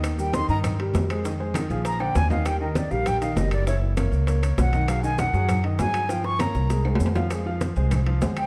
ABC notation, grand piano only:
X:1
M:4/4
L:1/8
Q:1/4=198
K:Eb
V:1 name="Grand piano"
[E,Ee] [G,GB] [E,Ee] [E,Ee]2 [G,GB]2 [A,Ac] | [E,Ee] [A,Ac] [E,Ee] [F,FA]2 [D,Dd]2 [E,Ee] | [G,GB] [E,Ee]2 [G,GB]2 [E,Ee] [G,GB]2 | [_F,_F_f]2 [B,B_d]2 [B,Bd] [B,Bd]2 [E,Ee] |
[^F,^F^G] [^D,^D^d]2 [F,FG]2 [D,Dd] [F,FG]2 | [F,Ff]2 [B,B_d]2 [A,AB] [A,AB]2 [F,Ff] | [A,Ac] [F,Ff]2 [A,Ac]2 [F,Ff] [A,Ac]2 |]